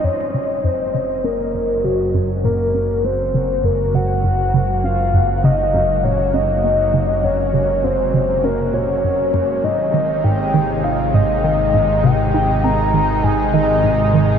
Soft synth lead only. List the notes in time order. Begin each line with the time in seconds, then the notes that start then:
0.05 C#5
0.65 C5
1.25 A#4
1.84 F#4
2.45 A#4
3.05 C5
3.65 A#4
3.95 F#5
4.85 F5
5.44 D#5
6.04 C#5
6.34 D#5
7.24 C#5
7.84 C5
8.44 A#4
8.74 C#5
9.64 D#5
10.24 G5
10.84 F5
11.14 D#5
12.04 G5
12.64 A#5
13.24 G#5
13.54 D#5